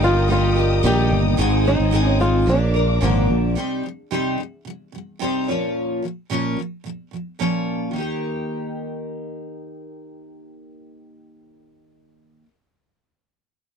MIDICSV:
0, 0, Header, 1, 5, 480
1, 0, Start_track
1, 0, Key_signature, -3, "major"
1, 0, Tempo, 546946
1, 1215, Time_signature, 4, 2, 24, 8
1, 12081, End_track
2, 0, Start_track
2, 0, Title_t, "String section"
2, 0, Program_c, 0, 48
2, 0, Note_on_c, 0, 70, 93
2, 0, Note_on_c, 0, 75, 83
2, 0, Note_on_c, 0, 79, 82
2, 0, Note_on_c, 0, 87, 99
2, 1193, Note_off_c, 0, 70, 0
2, 1193, Note_off_c, 0, 75, 0
2, 1196, Note_off_c, 0, 79, 0
2, 1203, Note_on_c, 0, 75, 75
2, 1203, Note_on_c, 0, 80, 75
2, 1210, Note_on_c, 0, 72, 83
2, 2141, Note_off_c, 0, 87, 0
2, 2157, Note_off_c, 0, 75, 0
2, 2157, Note_off_c, 0, 80, 0
2, 2160, Note_off_c, 0, 72, 0
2, 2163, Note_on_c, 0, 70, 77
2, 2163, Note_on_c, 0, 74, 72
2, 2164, Note_on_c, 0, 77, 70
2, 2167, Note_on_c, 0, 86, 87
2, 3116, Note_off_c, 0, 70, 0
2, 3116, Note_off_c, 0, 74, 0
2, 3117, Note_off_c, 0, 77, 0
2, 3118, Note_off_c, 0, 86, 0
2, 12081, End_track
3, 0, Start_track
3, 0, Title_t, "Nylon-string guitar"
3, 0, Program_c, 1, 24
3, 35, Note_on_c, 1, 65, 100
3, 267, Note_off_c, 1, 65, 0
3, 277, Note_on_c, 1, 65, 104
3, 752, Note_off_c, 1, 65, 0
3, 755, Note_on_c, 1, 67, 100
3, 1081, Note_off_c, 1, 67, 0
3, 1471, Note_on_c, 1, 63, 101
3, 1908, Note_off_c, 1, 63, 0
3, 1938, Note_on_c, 1, 65, 113
3, 2182, Note_off_c, 1, 65, 0
3, 2189, Note_on_c, 1, 62, 93
3, 2680, Note_off_c, 1, 62, 0
3, 2680, Note_on_c, 1, 60, 93
3, 2864, Note_off_c, 1, 60, 0
3, 12081, End_track
4, 0, Start_track
4, 0, Title_t, "Steel-string acoustic guitar"
4, 0, Program_c, 2, 25
4, 10, Note_on_c, 2, 67, 55
4, 21, Note_on_c, 2, 63, 58
4, 28, Note_on_c, 2, 58, 51
4, 36, Note_on_c, 2, 55, 48
4, 233, Note_off_c, 2, 55, 0
4, 243, Note_off_c, 2, 58, 0
4, 244, Note_on_c, 2, 55, 64
4, 253, Note_on_c, 2, 58, 66
4, 255, Note_off_c, 2, 67, 0
4, 256, Note_off_c, 2, 63, 0
4, 266, Note_on_c, 2, 63, 70
4, 272, Note_on_c, 2, 67, 75
4, 478, Note_off_c, 2, 67, 0
4, 488, Note_on_c, 2, 67, 58
4, 489, Note_off_c, 2, 63, 0
4, 491, Note_off_c, 2, 55, 0
4, 496, Note_off_c, 2, 58, 0
4, 500, Note_on_c, 2, 63, 57
4, 510, Note_on_c, 2, 58, 52
4, 515, Note_on_c, 2, 55, 50
4, 726, Note_off_c, 2, 55, 0
4, 727, Note_on_c, 2, 46, 87
4, 730, Note_off_c, 2, 58, 0
4, 731, Note_off_c, 2, 63, 0
4, 732, Note_on_c, 2, 51, 93
4, 733, Note_off_c, 2, 67, 0
4, 736, Note_on_c, 2, 55, 94
4, 740, Note_on_c, 2, 58, 91
4, 741, Note_on_c, 2, 63, 96
4, 749, Note_on_c, 2, 67, 93
4, 1197, Note_off_c, 2, 51, 0
4, 1200, Note_off_c, 2, 46, 0
4, 1203, Note_on_c, 2, 44, 89
4, 1208, Note_off_c, 2, 63, 0
4, 1208, Note_on_c, 2, 51, 89
4, 1210, Note_off_c, 2, 55, 0
4, 1212, Note_off_c, 2, 58, 0
4, 1213, Note_on_c, 2, 56, 99
4, 1216, Note_on_c, 2, 60, 104
4, 1219, Note_off_c, 2, 67, 0
4, 1219, Note_on_c, 2, 63, 94
4, 1222, Note_on_c, 2, 68, 109
4, 1434, Note_off_c, 2, 68, 0
4, 1442, Note_off_c, 2, 63, 0
4, 1444, Note_on_c, 2, 68, 61
4, 1449, Note_off_c, 2, 44, 0
4, 1451, Note_off_c, 2, 51, 0
4, 1452, Note_on_c, 2, 63, 56
4, 1454, Note_off_c, 2, 56, 0
4, 1455, Note_off_c, 2, 60, 0
4, 1464, Note_on_c, 2, 60, 50
4, 1473, Note_on_c, 2, 56, 46
4, 1677, Note_off_c, 2, 56, 0
4, 1678, Note_on_c, 2, 44, 81
4, 1683, Note_off_c, 2, 60, 0
4, 1686, Note_off_c, 2, 63, 0
4, 1688, Note_on_c, 2, 51, 83
4, 1688, Note_on_c, 2, 56, 89
4, 1689, Note_off_c, 2, 68, 0
4, 1693, Note_on_c, 2, 60, 90
4, 1696, Note_on_c, 2, 63, 91
4, 1699, Note_on_c, 2, 68, 91
4, 1911, Note_off_c, 2, 68, 0
4, 1919, Note_off_c, 2, 63, 0
4, 1921, Note_on_c, 2, 68, 56
4, 1925, Note_off_c, 2, 44, 0
4, 1928, Note_off_c, 2, 60, 0
4, 1929, Note_on_c, 2, 63, 57
4, 1930, Note_off_c, 2, 51, 0
4, 1930, Note_off_c, 2, 56, 0
4, 1939, Note_on_c, 2, 60, 53
4, 1948, Note_on_c, 2, 56, 50
4, 2154, Note_off_c, 2, 56, 0
4, 2157, Note_on_c, 2, 53, 69
4, 2164, Note_off_c, 2, 60, 0
4, 2167, Note_off_c, 2, 68, 0
4, 2167, Note_on_c, 2, 58, 67
4, 2170, Note_off_c, 2, 63, 0
4, 2174, Note_on_c, 2, 62, 72
4, 2184, Note_on_c, 2, 70, 66
4, 2392, Note_off_c, 2, 70, 0
4, 2399, Note_off_c, 2, 62, 0
4, 2402, Note_on_c, 2, 70, 57
4, 2404, Note_off_c, 2, 53, 0
4, 2409, Note_off_c, 2, 58, 0
4, 2410, Note_on_c, 2, 62, 51
4, 2422, Note_on_c, 2, 58, 53
4, 2429, Note_on_c, 2, 53, 45
4, 2638, Note_off_c, 2, 53, 0
4, 2638, Note_on_c, 2, 46, 91
4, 2641, Note_off_c, 2, 58, 0
4, 2644, Note_on_c, 2, 50, 80
4, 2646, Note_off_c, 2, 62, 0
4, 2646, Note_off_c, 2, 70, 0
4, 2649, Note_on_c, 2, 53, 85
4, 2652, Note_on_c, 2, 58, 83
4, 2657, Note_on_c, 2, 62, 89
4, 2659, Note_on_c, 2, 70, 88
4, 3115, Note_off_c, 2, 50, 0
4, 3119, Note_on_c, 2, 48, 77
4, 3121, Note_off_c, 2, 53, 0
4, 3124, Note_off_c, 2, 46, 0
4, 3125, Note_off_c, 2, 58, 0
4, 3125, Note_on_c, 2, 55, 77
4, 3128, Note_on_c, 2, 63, 74
4, 3130, Note_off_c, 2, 62, 0
4, 3133, Note_off_c, 2, 70, 0
4, 3133, Note_on_c, 2, 67, 89
4, 3136, Note_on_c, 2, 72, 81
4, 3355, Note_off_c, 2, 48, 0
4, 3365, Note_on_c, 2, 48, 45
4, 3367, Note_off_c, 2, 55, 0
4, 3369, Note_off_c, 2, 63, 0
4, 3371, Note_off_c, 2, 67, 0
4, 3373, Note_off_c, 2, 72, 0
4, 3389, Note_on_c, 2, 55, 55
4, 3560, Note_off_c, 2, 48, 0
4, 3571, Note_off_c, 2, 55, 0
4, 3604, Note_on_c, 2, 48, 78
4, 3607, Note_on_c, 2, 55, 76
4, 3613, Note_on_c, 2, 63, 78
4, 3616, Note_on_c, 2, 67, 86
4, 3618, Note_on_c, 2, 72, 85
4, 3831, Note_off_c, 2, 48, 0
4, 3841, Note_on_c, 2, 48, 48
4, 3848, Note_off_c, 2, 55, 0
4, 3851, Note_off_c, 2, 63, 0
4, 3853, Note_off_c, 2, 67, 0
4, 3854, Note_off_c, 2, 72, 0
4, 3868, Note_on_c, 2, 55, 53
4, 4037, Note_off_c, 2, 48, 0
4, 4051, Note_off_c, 2, 55, 0
4, 4079, Note_on_c, 2, 48, 56
4, 4104, Note_on_c, 2, 55, 67
4, 4276, Note_off_c, 2, 48, 0
4, 4289, Note_off_c, 2, 55, 0
4, 4320, Note_on_c, 2, 48, 44
4, 4349, Note_on_c, 2, 55, 52
4, 4517, Note_off_c, 2, 48, 0
4, 4531, Note_off_c, 2, 55, 0
4, 4558, Note_on_c, 2, 48, 72
4, 4565, Note_on_c, 2, 55, 79
4, 4569, Note_on_c, 2, 63, 74
4, 4578, Note_on_c, 2, 67, 83
4, 4580, Note_on_c, 2, 72, 81
4, 4804, Note_off_c, 2, 48, 0
4, 4807, Note_off_c, 2, 55, 0
4, 4808, Note_off_c, 2, 72, 0
4, 4810, Note_off_c, 2, 63, 0
4, 4811, Note_on_c, 2, 73, 57
4, 4813, Note_off_c, 2, 67, 0
4, 4817, Note_on_c, 2, 65, 61
4, 4819, Note_on_c, 2, 61, 57
4, 4823, Note_on_c, 2, 58, 48
4, 4826, Note_on_c, 2, 53, 47
4, 4829, Note_on_c, 2, 46, 51
4, 5276, Note_off_c, 2, 46, 0
4, 5287, Note_on_c, 2, 46, 44
4, 5289, Note_off_c, 2, 53, 0
4, 5291, Note_off_c, 2, 73, 0
4, 5294, Note_off_c, 2, 65, 0
4, 5295, Note_off_c, 2, 61, 0
4, 5300, Note_on_c, 2, 53, 49
4, 5309, Note_off_c, 2, 58, 0
4, 5312, Note_on_c, 2, 58, 50
4, 5481, Note_off_c, 2, 46, 0
4, 5487, Note_off_c, 2, 53, 0
4, 5494, Note_off_c, 2, 58, 0
4, 5526, Note_on_c, 2, 46, 70
4, 5531, Note_on_c, 2, 53, 76
4, 5535, Note_on_c, 2, 58, 76
4, 5537, Note_on_c, 2, 61, 80
4, 5543, Note_on_c, 2, 65, 73
4, 5544, Note_on_c, 2, 73, 76
4, 5752, Note_off_c, 2, 46, 0
4, 5762, Note_on_c, 2, 46, 42
4, 5771, Note_off_c, 2, 53, 0
4, 5773, Note_off_c, 2, 58, 0
4, 5774, Note_off_c, 2, 61, 0
4, 5777, Note_off_c, 2, 65, 0
4, 5777, Note_off_c, 2, 73, 0
4, 5780, Note_on_c, 2, 53, 50
4, 5789, Note_on_c, 2, 58, 52
4, 5959, Note_off_c, 2, 46, 0
4, 5968, Note_off_c, 2, 53, 0
4, 5972, Note_off_c, 2, 58, 0
4, 6001, Note_on_c, 2, 46, 54
4, 6017, Note_on_c, 2, 53, 56
4, 6029, Note_on_c, 2, 58, 61
4, 6198, Note_off_c, 2, 46, 0
4, 6206, Note_off_c, 2, 53, 0
4, 6212, Note_off_c, 2, 58, 0
4, 6241, Note_on_c, 2, 46, 42
4, 6259, Note_on_c, 2, 53, 42
4, 6267, Note_on_c, 2, 58, 47
4, 6438, Note_off_c, 2, 46, 0
4, 6447, Note_off_c, 2, 53, 0
4, 6451, Note_off_c, 2, 58, 0
4, 6484, Note_on_c, 2, 46, 70
4, 6490, Note_on_c, 2, 53, 69
4, 6492, Note_on_c, 2, 58, 70
4, 6494, Note_on_c, 2, 61, 76
4, 6499, Note_on_c, 2, 65, 67
4, 6501, Note_on_c, 2, 73, 78
4, 6938, Note_off_c, 2, 53, 0
4, 6942, Note_on_c, 2, 51, 60
4, 6961, Note_off_c, 2, 58, 0
4, 6965, Note_on_c, 2, 58, 63
4, 6969, Note_off_c, 2, 46, 0
4, 6974, Note_off_c, 2, 61, 0
4, 6976, Note_off_c, 2, 65, 0
4, 6977, Note_off_c, 2, 73, 0
4, 6985, Note_on_c, 2, 63, 62
4, 7007, Note_on_c, 2, 67, 65
4, 7021, Note_on_c, 2, 70, 67
4, 10910, Note_off_c, 2, 51, 0
4, 10933, Note_off_c, 2, 58, 0
4, 10953, Note_off_c, 2, 63, 0
4, 10975, Note_off_c, 2, 67, 0
4, 10989, Note_off_c, 2, 70, 0
4, 12081, End_track
5, 0, Start_track
5, 0, Title_t, "Fretless electric bass"
5, 0, Program_c, 3, 35
5, 0, Note_on_c, 3, 31, 95
5, 704, Note_off_c, 3, 31, 0
5, 736, Note_on_c, 3, 34, 101
5, 956, Note_off_c, 3, 34, 0
5, 975, Note_on_c, 3, 31, 93
5, 1196, Note_off_c, 3, 31, 0
5, 1219, Note_on_c, 3, 32, 112
5, 1547, Note_off_c, 3, 32, 0
5, 1578, Note_on_c, 3, 32, 89
5, 2145, Note_off_c, 3, 32, 0
5, 2170, Note_on_c, 3, 34, 104
5, 2615, Note_off_c, 3, 34, 0
5, 2655, Note_on_c, 3, 32, 91
5, 2874, Note_off_c, 3, 32, 0
5, 2899, Note_on_c, 3, 34, 82
5, 3116, Note_off_c, 3, 34, 0
5, 12081, End_track
0, 0, End_of_file